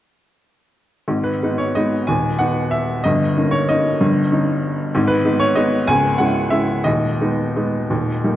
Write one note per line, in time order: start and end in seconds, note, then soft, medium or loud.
1.08 1.41 G#1 soft
1.08 1.41 G#2 soft
1.24 1.58 B4 medium
1.43 1.73 G#3 soft
1.43 1.73 B3 soft
1.43 1.73 D#4 soft
1.58 1.75 C#5 medium
1.75 2.06 G#3 soft
1.75 2.06 B3 soft
1.75 2.06 D#4 soft
1.75 2.08 D#5 medium
2.07 2.39 D#1 soft
2.07 2.39 D#2 soft
2.07 2.39 G#5 medium
2.39 3.01 B3 soft
2.39 3.01 D#4 soft
2.39 2.72 F#5 medium
2.71 3.04 E5 medium
3.04 3.35 G1 soft
3.04 3.36 G2 medium
3.04 3.52 D#5 medium
3.37 3.66 A#3 soft
3.37 3.66 C#4 soft
3.37 3.67 D#4 soft
3.51 3.69 C#5 medium
3.69 3.98 A#3 soft
3.69 3.99 C#4 soft
3.69 3.99 D#4 soft
3.69 4.95 D#5 medium
4.01 4.31 G1 medium
4.01 4.31 G2 medium
4.32 4.91 C#4 soft
4.32 4.91 D#4 soft
4.95 5.24 G#1 medium
4.95 5.24 G#2 medium
5.07 5.40 B4 medium
5.25 5.54 G#3 soft
5.25 5.54 B3 soft
5.25 5.54 D#4 soft
5.39 5.56 C#5 medium
5.55 5.85 G#3 soft
5.55 5.85 B3 soft
5.55 5.85 D#4 soft
5.55 5.88 D#5 medium
5.87 6.19 C#1 medium
5.87 6.19 C#2 medium
5.87 6.19 G#5 loud
6.18 6.49 G#3 soft
6.18 6.49 C#4 soft
6.18 6.50 E4 soft
6.18 6.51 F#5 medium
6.50 6.82 G#3 soft
6.50 6.82 C#4 soft
6.50 6.83 E4 soft
6.50 6.85 E5 medium
6.84 7.18 D#1 soft
6.84 7.19 D#2 soft
6.84 8.36 D#5 medium
7.21 7.52 G#3 soft
7.21 7.52 B3 soft
7.21 7.53 D#4 soft
7.56 7.87 G#3 soft
7.56 7.87 B3 soft
7.56 7.87 D#4 soft
7.90 8.23 D#1 soft
7.90 8.23 D#2 soft
8.24 8.36 G3 soft
8.24 8.36 A#3 soft
8.24 8.36 D#4 soft